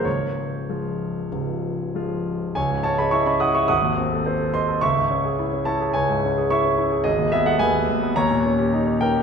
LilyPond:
\new Staff \with { instrumentName = "Grand piano" } { \time 4/4 \key des \major \tempo 4 = 106 << { des''2. r4 | \key cis \minor <cis'' gis''>8 <cis'' a''>16 <dis'' b''>16 <e'' cis'''>16 <dis'' b''>16 <fis'' dis'''>16 <e'' cis'''>16 <fis'' dis'''>4. <dis'' bis''>8 | <e'' cis'''>4. <cis'' a''>8 <cis'' gis''>4 <e'' cis'''>4 | <gis' dis''>8 <gis' e''>16 <a' fis''>16 <b' gis''>4 <cis'' ais''>4. <ais' g''>8 | } \\ { <des,, des,>4 <f aes f'>4 <des,, des,>4 <f aes f'>4 | cis,16 gis,16 cis'16 gis'16 e'16 cis'16 e'16 gis'16 gis,,16 dis,16 bis16 a'16 bis'16 a'16 bis'16 a'16 | cis,16 gis,16 cis'16 gis'16 e'16 cis'16 e'16 gis'16 cis,16 gis,16 cis'16 gis'16 e'16 cis'16 e'16 gis'16 | gis,,16 dis,16 b16 gis16 dis,16 gis16 dis,16 b16 dis,16 ais,16 cis'16 g'16 dis'16 cis'16 dis'16 g'16 | } >> }